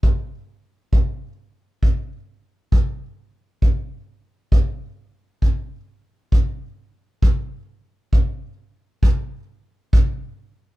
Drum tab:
BD |o--o--o--o--|o--o--o--o--|o--o--o--o--|